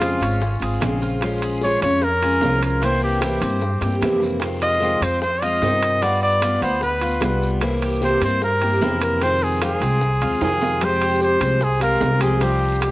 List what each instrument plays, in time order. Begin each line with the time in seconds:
Already playing: upright bass F2, trumpet F4
0.00 steel-string acoustic guitar C#3 F3 G#3 C4 F4, cuban tres G#4, high bongo, high timbale, short guiro, maracas
0.20 upright bass G#1, steel-string acoustic guitar G#3 C4 F4, cuban tres C#4, high bongo, high timbale, short guiro, maracas
0.41 muted steel-string acoustic guitar stroke, high bongo, long guiro, maracas
0.60 upright bass G#1, steel-string acoustic guitar G#3 C4 F4, cuban tres G#4, high bongo, high timbale
0.80 upright bass A#1, steel-string acoustic guitar C#3 F3 G#3 C4 F4, high bongo, low bongo, high timbale, low timbale, short guiro, maracas
1.01 cuban tres F4, high bongo, short guiro, maracas
1.21 steel-string acoustic guitar F3 G#3 C#4 F4, high bongo, high timbale, long guiro, maracas
1.42 cuban tres G#4, high timbale, maracas
1.61 steel-string acoustic guitar F3 G#3 C#4 F4, trumpet C#5, high bongo, short guiro, maracas
1.81 upright bass F2, cuban tres C#4, steel-string acoustic guitar C#4 F4, trumpet C#5, high timbale, short guiro, maracas
1.86 steel-string acoustic guitar G#3
2.01 trumpet A#4, muted steel-string acoustic guitar stroke, high bongo, long guiro, maracas
2.22 steel-string acoustic guitar G#3 C#4 F4, cuban tres G#4, high timbale
2.41 upright bass C2, steel-string acoustic guitar F3 G#3 C#4 F4, cuban tres F4, high bongo, low bongo, low timbale, short guiro, maracas
2.62 trumpet A#4, high timbale, short guiro, maracas
2.82 steel-string acoustic guitar C3 E3 A#3 C4 E4, cuban tres C4, trumpet C5, high bongo, high timbale, long guiro, maracas
3.04 trumpet G4
3.21 steel-string acoustic guitar C3 E3 A#3 C4 E4, cuban tres G4, trumpet G4, high bongo, high timbale, short guiro, maracas
3.41 upright bass G2, steel-string acoustic guitar A#3 C4 E4, cuban tres C4, high bongo, high timbale, short guiro, maracas
3.61 muted steel-string acoustic guitar stroke, high bongo, long guiro, maracas
3.81 upright bass G2, steel-string acoustic guitar A#3 C4 E4, cuban tres G4, high bongo, high timbale, maracas
4.01 upright bass F2, steel-string acoustic guitar C3 E3 A#3 C4 E4, low bongo, high timbale, low timbale, short guiro, maracas
4.20 low bongo, short guiro, maracas
4.40 steel-string acoustic guitar C3 D#3 G#3 C4 F4, high bongo, high timbale, long guiro, maracas
4.62 cuban tres F4, trumpet D#5, high timbale, maracas
4.80 steel-string acoustic guitar C3 D#3 G#3 C4 F4, high bongo, short guiro, maracas
5.01 upright bass F2, steel-string acoustic guitar G#3 C4 F4, cuban tres C4, trumpet C5, high timbale, short guiro, maracas
5.22 trumpet C5, muted steel-string acoustic guitar stroke, high bongo, long guiro, maracas
5.42 steel-string acoustic guitar G#3 C4 F4, cuban tres F4, trumpet D#5, high timbale, maracas
5.61 upright bass G2, steel-string acoustic guitar C3 D#3 C4 F4, cuban tres D#4, high bongo, low bongo, low timbale, short guiro, maracas
5.82 high timbale, short guiro, maracas
6.02 steel-string acoustic guitar G3 B3 F4, cuban tres B3, trumpet D5, high bongo, high timbale, long guiro, maracas
6.23 trumpet D5
6.42 steel-string acoustic guitar G3 B3 F4, cuban tres F4, high bongo, high timbale, short guiro, maracas
6.61 upright bass D2, cuban tres B3, steel-string acoustic guitar B3 F4, trumpet C5, high bongo, high timbale, short guiro, maracas
6.81 trumpet B4, muted steel-string acoustic guitar stroke, high bongo, long guiro, maracas
7.01 steel-string acoustic guitar B3 F4, cuban tres F4, high bongo, high timbale, maracas
7.20 upright bass C2, steel-string acoustic guitar G3 B3 F4, trumpet B4, high bongo, low bongo, high timbale, low timbale, short guiro, maracas
7.42 high bongo, short guiro, maracas
7.61 steel-string acoustic guitar C3 E3 A#3 C4 E4, high bongo, high timbale, long guiro, maracas
7.82 cuban tres G4, high timbale
8.01 steel-string acoustic guitar C3 E3 A#3 C4 E4, trumpet C5, high bongo, short guiro, maracas
8.21 upright bass G2, steel-string acoustic guitar A#3 C4 E4, cuban tres C4, trumpet C5, high timbale, short guiro, maracas
8.41 trumpet A#4, muted steel-string acoustic guitar stroke, high bongo, long guiro, maracas
8.62 steel-string acoustic guitar A#3 C4 E4, cuban tres G4, high timbale
8.81 upright bass F2, steel-string acoustic guitar C3 E3 A#3 C4 E4, cuban tres E4, high bongo, low bongo, low timbale, short guiro, maracas
9.01 trumpet A#4, high timbale, short guiro, maracas
9.21 steel-string acoustic guitar C3 D#3 G#3 C4 F4, cuban tres C4, trumpet C5, high bongo, high timbale, long guiro, maracas
9.43 trumpet G#4
9.61 steel-string acoustic guitar C3 D#3 G#3 C4 F4, cuban tres F4, trumpet G#4, high bongo, high timbale, short guiro, maracas
9.81 upright bass C2, steel-string acoustic guitar G#3 C4 F4, cuban tres C4, high timbale, short guiro, maracas
10.01 muted steel-string acoustic guitar stroke, high bongo, long guiro, maracas
10.21 upright bass D#2, steel-string acoustic guitar G#3 C4 F4, cuban tres F4, high bongo, high timbale
10.40 upright bass F2, steel-string acoustic guitar C3 D#3 G#3 C4 F4, trumpet G#4, high bongo, low bongo, high timbale, short guiro, maracas
10.61 cuban tres F4, high bongo, low timbale, short guiro, maracas
10.81 steel-string acoustic guitar C3 F3 G#3 C4 G4, trumpet C5, high bongo, high timbale, long guiro, maracas
11.02 cuban tres G4, high timbale
11.20 trumpet C5, high bongo, short guiro, maracas
11.40 upright bass C2, steel-string acoustic guitar F3 G#3 C4 G4, cuban tres C5, high timbale, short guiro, maracas
11.61 trumpet G#4, muted steel-string acoustic guitar stroke, high bongo, long guiro, maracas
11.80 steel-string acoustic guitar G#3 C4 G4, cuban tres F4, trumpet A#4, high timbale, maracas
12.01 upright bass C2, high bongo, low bongo, low timbale, short guiro, maracas
12.20 steel-string acoustic guitar F3 G#3 C4 G4, cuban tres G4, trumpet G#4, high timbale, short guiro, maracas
12.40 steel-string acoustic guitar C3 F3 G3 C4 F4, cuban tres C4, trumpet G4, high bongo, high timbale, long guiro, maracas
12.81 cuban tres G4, trumpet G4, high bongo, high timbale, short guiro, maracas